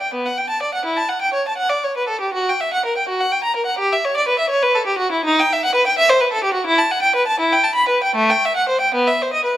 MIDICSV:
0, 0, Header, 1, 2, 480
1, 0, Start_track
1, 0, Tempo, 490196
1, 835, Time_signature, 6, 3, 24, 8
1, 1790, Tempo, 511073
1, 2750, Tempo, 475813
1, 4670, Tempo, 502934
1, 5630, Tempo, 470588
1, 7550, Tempo, 515907
1, 9345, End_track
2, 0, Start_track
2, 0, Title_t, "Violin"
2, 0, Program_c, 0, 40
2, 12, Note_on_c, 0, 79, 55
2, 122, Note_off_c, 0, 79, 0
2, 134, Note_on_c, 0, 59, 59
2, 244, Note_off_c, 0, 59, 0
2, 251, Note_on_c, 0, 78, 72
2, 365, Note_off_c, 0, 78, 0
2, 366, Note_on_c, 0, 79, 59
2, 482, Note_off_c, 0, 79, 0
2, 487, Note_on_c, 0, 81, 68
2, 599, Note_off_c, 0, 81, 0
2, 611, Note_on_c, 0, 74, 57
2, 720, Note_off_c, 0, 74, 0
2, 726, Note_on_c, 0, 78, 62
2, 835, Note_on_c, 0, 64, 61
2, 838, Note_off_c, 0, 78, 0
2, 950, Note_on_c, 0, 81, 69
2, 952, Note_off_c, 0, 64, 0
2, 1064, Note_on_c, 0, 78, 63
2, 1071, Note_off_c, 0, 81, 0
2, 1188, Note_off_c, 0, 78, 0
2, 1189, Note_on_c, 0, 79, 63
2, 1307, Note_off_c, 0, 79, 0
2, 1308, Note_on_c, 0, 73, 61
2, 1426, Note_off_c, 0, 73, 0
2, 1449, Note_on_c, 0, 81, 53
2, 1541, Note_on_c, 0, 78, 76
2, 1557, Note_off_c, 0, 81, 0
2, 1662, Note_off_c, 0, 78, 0
2, 1662, Note_on_c, 0, 74, 68
2, 1787, Note_off_c, 0, 74, 0
2, 1801, Note_on_c, 0, 73, 60
2, 1915, Note_off_c, 0, 73, 0
2, 1923, Note_on_c, 0, 71, 65
2, 2028, Note_on_c, 0, 69, 64
2, 2037, Note_off_c, 0, 71, 0
2, 2146, Note_on_c, 0, 67, 59
2, 2152, Note_off_c, 0, 69, 0
2, 2263, Note_on_c, 0, 66, 79
2, 2273, Note_off_c, 0, 67, 0
2, 2392, Note_off_c, 0, 66, 0
2, 2414, Note_on_c, 0, 79, 64
2, 2520, Note_on_c, 0, 76, 69
2, 2527, Note_off_c, 0, 79, 0
2, 2636, Note_off_c, 0, 76, 0
2, 2641, Note_on_c, 0, 78, 71
2, 2750, Note_off_c, 0, 78, 0
2, 2753, Note_on_c, 0, 70, 66
2, 2871, Note_off_c, 0, 70, 0
2, 2874, Note_on_c, 0, 79, 58
2, 2987, Note_on_c, 0, 66, 69
2, 2991, Note_off_c, 0, 79, 0
2, 3105, Note_on_c, 0, 78, 75
2, 3108, Note_off_c, 0, 66, 0
2, 3224, Note_on_c, 0, 79, 75
2, 3229, Note_off_c, 0, 78, 0
2, 3342, Note_on_c, 0, 82, 73
2, 3349, Note_off_c, 0, 79, 0
2, 3466, Note_off_c, 0, 82, 0
2, 3468, Note_on_c, 0, 70, 66
2, 3567, Note_on_c, 0, 78, 66
2, 3589, Note_off_c, 0, 70, 0
2, 3693, Note_on_c, 0, 67, 86
2, 3698, Note_off_c, 0, 78, 0
2, 3821, Note_off_c, 0, 67, 0
2, 3832, Note_on_c, 0, 76, 71
2, 3952, Note_off_c, 0, 76, 0
2, 3958, Note_on_c, 0, 73, 84
2, 4074, Note_off_c, 0, 73, 0
2, 4080, Note_on_c, 0, 74, 77
2, 4193, Note_off_c, 0, 74, 0
2, 4195, Note_on_c, 0, 71, 78
2, 4304, Note_on_c, 0, 76, 73
2, 4309, Note_off_c, 0, 71, 0
2, 4412, Note_on_c, 0, 73, 85
2, 4422, Note_off_c, 0, 76, 0
2, 4537, Note_off_c, 0, 73, 0
2, 4539, Note_on_c, 0, 71, 86
2, 4665, Note_on_c, 0, 69, 76
2, 4666, Note_off_c, 0, 71, 0
2, 4776, Note_on_c, 0, 67, 78
2, 4788, Note_off_c, 0, 69, 0
2, 4890, Note_on_c, 0, 66, 77
2, 4905, Note_off_c, 0, 67, 0
2, 5017, Note_on_c, 0, 64, 70
2, 5026, Note_off_c, 0, 66, 0
2, 5144, Note_on_c, 0, 63, 97
2, 5152, Note_off_c, 0, 64, 0
2, 5275, Note_off_c, 0, 63, 0
2, 5279, Note_on_c, 0, 79, 84
2, 5401, Note_off_c, 0, 79, 0
2, 5411, Note_on_c, 0, 76, 81
2, 5522, Note_off_c, 0, 76, 0
2, 5526, Note_on_c, 0, 78, 89
2, 5620, Note_on_c, 0, 71, 86
2, 5632, Note_off_c, 0, 78, 0
2, 5741, Note_off_c, 0, 71, 0
2, 5744, Note_on_c, 0, 79, 76
2, 5859, Note_on_c, 0, 76, 100
2, 5862, Note_off_c, 0, 79, 0
2, 5975, Note_on_c, 0, 72, 88
2, 5980, Note_off_c, 0, 76, 0
2, 6086, Note_on_c, 0, 71, 74
2, 6101, Note_off_c, 0, 72, 0
2, 6205, Note_on_c, 0, 69, 84
2, 6216, Note_off_c, 0, 71, 0
2, 6322, Note_on_c, 0, 67, 83
2, 6332, Note_off_c, 0, 69, 0
2, 6422, Note_on_c, 0, 66, 67
2, 6448, Note_off_c, 0, 67, 0
2, 6552, Note_on_c, 0, 64, 89
2, 6556, Note_off_c, 0, 66, 0
2, 6677, Note_on_c, 0, 81, 77
2, 6680, Note_off_c, 0, 64, 0
2, 6803, Note_on_c, 0, 78, 83
2, 6805, Note_off_c, 0, 81, 0
2, 6916, Note_on_c, 0, 79, 81
2, 6929, Note_off_c, 0, 78, 0
2, 7045, Note_off_c, 0, 79, 0
2, 7054, Note_on_c, 0, 71, 78
2, 7173, Note_on_c, 0, 81, 83
2, 7176, Note_off_c, 0, 71, 0
2, 7297, Note_off_c, 0, 81, 0
2, 7300, Note_on_c, 0, 64, 85
2, 7422, Note_off_c, 0, 64, 0
2, 7428, Note_on_c, 0, 79, 93
2, 7543, Note_on_c, 0, 81, 81
2, 7552, Note_off_c, 0, 79, 0
2, 7651, Note_on_c, 0, 83, 83
2, 7664, Note_off_c, 0, 81, 0
2, 7776, Note_on_c, 0, 71, 70
2, 7778, Note_off_c, 0, 83, 0
2, 7904, Note_off_c, 0, 71, 0
2, 7915, Note_on_c, 0, 79, 72
2, 8024, Note_on_c, 0, 57, 89
2, 8037, Note_off_c, 0, 79, 0
2, 8152, Note_off_c, 0, 57, 0
2, 8160, Note_on_c, 0, 79, 75
2, 8282, Note_off_c, 0, 79, 0
2, 8303, Note_on_c, 0, 76, 74
2, 8408, Note_on_c, 0, 78, 71
2, 8412, Note_off_c, 0, 76, 0
2, 8520, Note_off_c, 0, 78, 0
2, 8523, Note_on_c, 0, 72, 74
2, 8635, Note_on_c, 0, 79, 70
2, 8636, Note_off_c, 0, 72, 0
2, 8750, Note_off_c, 0, 79, 0
2, 8761, Note_on_c, 0, 59, 77
2, 8873, Note_off_c, 0, 59, 0
2, 8881, Note_on_c, 0, 76, 67
2, 8995, Note_off_c, 0, 76, 0
2, 9018, Note_on_c, 0, 72, 65
2, 9123, Note_off_c, 0, 72, 0
2, 9124, Note_on_c, 0, 75, 69
2, 9228, Note_on_c, 0, 71, 63
2, 9235, Note_off_c, 0, 75, 0
2, 9345, Note_off_c, 0, 71, 0
2, 9345, End_track
0, 0, End_of_file